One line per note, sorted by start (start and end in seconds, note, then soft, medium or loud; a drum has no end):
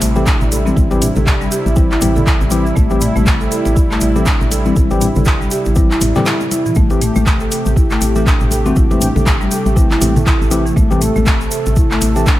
0.00 0.35 A1 medium
0.00 6.73 C3 medium
0.00 6.73 G3 medium
0.00 6.73 E4 medium
0.00 open hi-hat medium
0.00 shaker loud
0.15 0.25 E3 medium
0.15 0.25 G3 medium
0.15 0.25 C4 medium
0.15 0.25 G4 medium
0.15 0.26 A4 medium
0.15 muted conga soft
0.15 shaker soft
0.26 0.40 D4 medium
0.26 kick loud
0.26 clap loud
0.26 shaker medium
0.41 0.72 A1 medium
0.41 mid tom loud
0.41 shaker soft
0.52 0.60 A4 medium
0.52 open hi-hat medium
0.52 muted conga medium
0.52 shaker medium
0.66 0.88 E3 medium
0.66 0.88 G3 medium
0.66 0.75 C4 medium
0.66 0.88 C4 medium
0.66 0.88 E4 medium
0.66 high conga medium
0.66 shaker soft
0.76 1.10 A1 loud
0.76 0.90 E4 medium
0.76 kick loud
0.76 high conga medium
0.76 shaker medium
0.91 1.07 E3 loud
0.91 1.07 G3 medium
0.91 1.07 C4 medium
0.91 1.07 G4 loud
0.91 muted conga medium
0.91 high conga medium
0.91 shaker soft
1.02 1.15 D4 medium
1.02 mid tom medium
1.02 open hi-hat medium
1.02 shaker loud
1.16 1.47 A1 medium
1.16 1.26 A4 medium
1.16 high conga medium
1.16 low conga medium
1.16 shaker soft
1.27 kick loud
1.27 clap loud
1.27 muted conga soft
1.27 shaker soft
1.41 1.50 G3 loud
1.41 shaker soft
1.51 1.65 G4 loud
1.51 open hi-hat medium
1.51 shaker medium
1.66 1.97 A1 medium
1.66 muted conga soft
1.66 shaker soft
1.76 1.89 E3 medium
1.76 1.89 G3 medium
1.76 1.89 C4 medium
1.76 1.90 E4 medium
1.76 1.89 G4 medium
1.76 kick loud
1.76 shaker soft
1.91 2.00 E4 loud
1.91 clap medium
1.91 shaker soft
2.01 2.35 A1 medium
2.01 2.14 E3 medium
2.01 2.14 G3 medium
2.01 2.14 C4 medium
2.01 2.14 G4 loud
2.01 mid tom medium
2.01 open hi-hat medium
2.01 high conga medium
2.01 shaker medium
2.16 2.26 A4 medium
2.16 mid tom loud
2.16 muted conga soft
2.16 low conga medium
2.16 shaker soft
2.26 2.39 E4 medium
2.26 kick loud
2.26 clap medium
2.26 shaker soft
2.41 2.72 A1 medium
2.41 shaker soft
2.51 2.64 E3 loud
2.51 2.64 G3 medium
2.51 2.64 C4 medium
2.51 2.59 E4 medium
2.51 2.64 G4 loud
2.51 open hi-hat medium
2.51 muted conga medium
2.51 shaker medium
2.65 2.75 E3 medium
2.65 shaker soft
2.76 3.10 A1 loud
2.76 2.84 A3 loud
2.76 kick loud
2.76 high conga medium
2.76 shaker soft
2.90 3.00 E3 medium
2.90 3.00 G3 medium
2.90 3.00 C4 medium
2.90 3.00 G4 loud
2.90 muted conga medium
2.90 high conga medium
2.90 shaker soft
3.01 3.14 A3 medium
3.01 mid tom medium
3.01 open hi-hat medium
3.01 shaker medium
3.16 3.47 A1 loud
3.16 3.25 A3 loud
3.16 high conga medium
3.16 shaker soft
3.26 kick loud
3.26 clap loud
3.26 muted conga soft
3.26 shaker medium
3.41 3.47 A4 medium
3.41 shaker soft
3.51 3.64 A4 medium
3.51 open hi-hat medium
3.51 shaker medium
3.65 3.97 A1 medium
3.65 muted conga medium
3.65 shaker soft
3.76 3.89 E4 medium
3.76 kick loud
3.76 shaker medium
3.91 4.00 A3 loud
3.91 clap medium
3.91 shaker soft
4.01 4.35 A1 medium
4.01 open hi-hat medium
4.01 shaker medium
4.16 4.25 E3 medium
4.16 4.25 G3 medium
4.16 4.25 C4 medium
4.16 4.25 G4 medium
4.16 4.26 A4 medium
4.16 muted conga soft
4.16 shaker soft
4.26 4.39 D4 medium
4.26 kick loud
4.26 clap loud
4.26 shaker medium
4.41 4.72 A1 medium
4.41 mid tom loud
4.41 shaker soft
4.51 4.59 A4 medium
4.51 open hi-hat medium
4.51 muted conga medium
4.51 shaker medium
4.65 4.88 E3 medium
4.65 4.88 G3 medium
4.65 4.75 C4 medium
4.65 4.88 C4 medium
4.65 4.88 E4 medium
4.65 high conga medium
4.65 shaker soft
4.76 5.10 A1 loud
4.76 4.89 E4 medium
4.76 kick loud
4.76 high conga medium
4.76 shaker medium
4.91 5.07 E3 medium
4.91 5.07 G3 medium
4.91 5.07 C4 medium
4.91 5.07 G4 loud
4.91 muted conga medium
4.91 high conga medium
4.91 shaker soft
5.01 5.15 D4 medium
5.01 mid tom loud
5.01 open hi-hat medium
5.01 shaker medium
5.16 5.47 A1 loud
5.16 5.26 A4 medium
5.16 high conga medium
5.16 low conga medium
5.16 shaker soft
5.25 kick loud
5.25 clap loud
5.25 muted conga soft
5.25 shaker medium
5.41 5.50 G3 loud
5.41 shaker soft
5.51 5.65 G4 loud
5.51 open hi-hat medium
5.51 shaker medium
5.65 5.97 A1 medium
5.65 muted conga medium
5.65 shaker soft
5.76 5.89 E3 medium
5.76 5.89 G3 medium
5.76 5.89 C4 medium
5.76 5.90 E4 medium
5.76 5.89 G4 loud
5.76 kick loud
5.76 shaker medium
5.91 6.00 E4 loud
5.91 clap medium
5.91 shaker soft
6.01 6.12 A1 loud
6.01 mid tom medium
6.01 open hi-hat medium
6.01 high conga medium
6.01 shaker loud
6.15 6.25 E3 loud
6.15 6.25 G3 medium
6.15 6.25 C4 medium
6.15 6.25 G4 loud
6.15 6.26 A4 medium
6.15 clap soft
6.15 mid tom loud
6.15 muted conga soft
6.15 low conga medium
6.15 shaker soft
6.26 6.40 E4 medium
6.26 snare medium
6.26 clap loud
6.26 shaker soft
6.40 high tom medium
6.40 shaker soft
6.51 6.59 E4 medium
6.51 open hi-hat medium
6.51 muted conga medium
6.51 shaker medium
6.66 6.75 E3 medium
6.66 mid tom medium
6.66 shaker soft
6.75 7.10 A1 loud
6.75 12.40 C3 medium
6.75 6.84 A3 loud
6.75 12.40 A3 medium
6.75 10.73 G4 medium
6.75 kick loud
6.75 high conga medium
6.75 shaker medium
6.90 7.00 E3 medium
6.90 7.00 A3 medium
6.90 7.00 C4 medium
6.90 7.00 G4 loud
6.90 muted conga soft
6.90 high conga medium
6.90 shaker soft
7.01 7.15 A3 medium
7.01 mid tom medium
7.01 open hi-hat medium
7.01 shaker medium
7.16 7.47 A1 loud
7.16 7.25 A3 loud
7.16 high conga medium
7.16 shaker soft
7.26 kick loud
7.26 clap loud
7.26 muted conga soft
7.26 shaker medium
7.40 7.47 A4 medium
7.40 shaker soft
7.51 7.65 A4 medium
7.51 open hi-hat medium
7.51 shaker medium
7.66 7.97 A1 medium
7.66 muted conga medium
7.66 shaker soft
7.76 7.90 E4 medium
7.76 kick loud
7.76 shaker medium
7.90 8.00 A3 loud
7.90 clap medium
7.90 shaker soft
8.01 8.35 A1 medium
8.01 open hi-hat loud
8.01 shaker medium
8.16 8.25 E3 medium
8.16 8.25 A3 medium
8.16 8.25 C4 medium
8.16 8.25 G4 medium
8.16 8.26 A4 medium
8.16 muted conga soft
8.16 shaker soft
8.26 8.40 D4 medium
8.26 kick loud
8.26 clap loud
8.26 shaker medium
8.40 8.72 A1 medium
8.40 mid tom medium
8.40 shaker soft
8.51 8.59 A4 medium
8.51 open hi-hat medium
8.51 muted conga medium
8.51 shaker medium
8.66 8.88 E3 medium
8.66 8.87 A3 medium
8.66 8.87 C4 medium
8.66 8.76 C4 medium
8.66 8.87 F#4 medium
8.66 high conga medium
8.66 shaker soft
8.76 9.10 A1 loud
8.76 8.90 E4 medium
8.76 kick loud
8.76 high conga medium
8.76 shaker medium
8.91 9.07 E3 medium
8.91 9.07 A3 medium
8.91 9.07 C4 medium
8.91 9.07 G4 loud
8.91 muted conga medium
8.91 high conga loud
8.91 shaker soft
9.01 9.15 D4 medium
9.01 mid tom medium
9.01 open hi-hat medium
9.01 shaker loud
9.16 9.47 A1 medium
9.16 9.26 A4 medium
9.16 high conga medium
9.16 low conga medium
9.16 shaker soft
9.26 kick loud
9.26 clap loud
9.26 muted conga soft
9.26 shaker medium
9.41 9.50 G3 loud
9.41 shaker soft
9.51 9.64 G4 loud
9.51 open hi-hat medium
9.51 shaker loud
9.65 9.97 A1 medium
9.65 muted conga medium
9.65 shaker soft
9.76 9.89 E3 medium
9.76 9.89 A3 medium
9.76 9.89 C4 medium
9.76 9.89 E4 medium
9.76 9.89 G4 loud
9.76 kick loud
9.76 shaker medium
9.91 10.00 E4 loud
9.91 clap medium
9.91 shaker soft
10.01 10.35 A1 medium
10.01 10.14 E3 medium
10.01 10.14 A3 medium
10.01 10.14 C4 medium
10.01 10.14 G4 loud
10.01 mid tom medium
10.01 open hi-hat medium
10.01 high conga loud
10.01 shaker loud
10.16 10.26 A4 medium
10.16 mid tom medium
10.16 muted conga soft
10.16 low conga loud
10.16 shaker soft
10.26 10.40 E4 medium
10.26 kick loud
10.26 clap loud
10.26 shaker medium
10.41 10.72 A1 medium
10.41 shaker soft
10.51 10.64 E3 loud
10.51 10.64 A3 medium
10.51 10.64 C4 medium
10.51 10.59 E4 medium
10.51 10.64 G4 loud
10.51 open hi-hat medium
10.51 muted conga medium
10.51 shaker loud
10.66 10.75 E3 medium
10.66 shaker soft
10.76 11.10 A1 loud
10.76 10.84 A3 loud
10.76 12.40 A4 medium
10.76 kick loud
10.76 high conga medium
10.76 shaker medium
10.91 11.00 E3 loud
10.91 11.00 A3 medium
10.91 11.00 C4 medium
10.91 11.00 G4 loud
10.91 muted conga medium
10.91 high conga loud
10.91 shaker soft
11.01 11.15 A3 medium
11.01 mid tom medium
11.01 open hi-hat medium
11.01 shaker loud
11.16 11.47 A1 loud
11.16 11.25 A3 loud
11.16 high conga medium
11.16 shaker soft
11.26 kick loud
11.26 clap loud
11.26 muted conga soft
11.26 shaker medium
11.41 11.47 A4 medium
11.41 shaker soft
11.51 11.65 A4 medium
11.51 open hi-hat medium
11.51 shaker loud
11.66 11.97 A1 medium
11.66 muted conga soft
11.66 shaker soft
11.76 11.90 E4 medium
11.76 kick loud
11.76 shaker medium
11.91 12.00 A3 loud
11.91 clap medium
11.91 shaker soft
12.01 12.35 A1 medium
12.01 open hi-hat medium
12.01 shaker medium
12.16 12.25 E3 medium
12.16 12.25 A3 medium
12.16 12.25 C4 medium
12.16 12.25 G4 medium
12.16 12.26 A4 medium
12.16 muted conga soft
12.16 shaker soft
12.27 12.40 D4 medium
12.27 kick loud
12.27 clap loud
12.27 shaker medium